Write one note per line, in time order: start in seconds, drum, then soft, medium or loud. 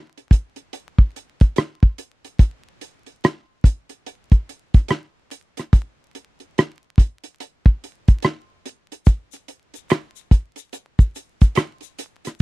0.17 closed hi-hat soft
0.31 kick medium
0.31 closed hi-hat medium
0.56 closed hi-hat soft
0.73 closed hi-hat medium
0.98 kick medium
1.16 closed hi-hat medium
1.41 kick medium
1.41 closed hi-hat soft
1.56 cross-stick loud
1.56 closed hi-hat medium
1.83 kick medium
1.98 closed hi-hat medium
2.25 closed hi-hat soft
2.39 kick medium
2.39 closed hi-hat medium
2.81 closed hi-hat medium
3.06 closed hi-hat soft
3.24 cross-stick loud
3.24 closed hi-hat medium
3.64 kick medium
3.64 closed hi-hat medium
3.89 closed hi-hat soft
4.06 closed hi-hat medium
4.32 kick medium
4.32 closed hi-hat soft
4.49 closed hi-hat medium
4.74 kick medium
4.74 closed hi-hat soft
4.88 cross-stick medium
4.88 closed hi-hat medium
5.31 closed hi-hat medium
5.57 cross-stick soft
5.57 closed hi-hat medium
5.73 kick loud
5.73 closed hi-hat medium
6.15 closed hi-hat medium
6.40 closed hi-hat soft
6.58 cross-stick loud
6.58 closed hi-hat medium
6.98 kick medium
6.98 closed hi-hat medium
7.24 closed hi-hat soft
7.40 closed hi-hat medium
7.66 kick medium
7.84 closed hi-hat medium
8.08 kick medium
8.08 closed hi-hat soft
8.22 cross-stick medium
8.22 closed hi-hat medium
8.66 closed hi-hat medium
8.92 closed hi-hat soft
9.06 kick medium
9.06 closed hi-hat medium
9.06 shaker medium
9.32 closed hi-hat soft
9.32 shaker soft
9.48 closed hi-hat medium
9.74 closed hi-hat soft
9.74 shaker soft
9.90 finger snap medium
9.90 cross-stick loud
9.90 closed hi-hat medium
9.90 shaker medium
10.16 shaker soft
10.31 kick medium
10.31 closed hi-hat medium
10.56 closed hi-hat soft
10.56 shaker soft
10.73 closed hi-hat medium
10.73 shaker medium
10.99 kick medium
10.99 shaker soft
11.16 closed hi-hat medium
11.16 shaker soft
11.41 kick medium
11.41 closed hi-hat soft
11.41 shaker soft
11.55 finger snap medium
11.55 cross-stick loud
11.55 closed hi-hat medium
11.55 shaker medium
11.81 closed hi-hat soft
11.81 shaker soft
11.99 closed hi-hat medium
11.99 shaker soft
12.25 cross-stick soft
12.25 closed hi-hat medium
12.25 shaker soft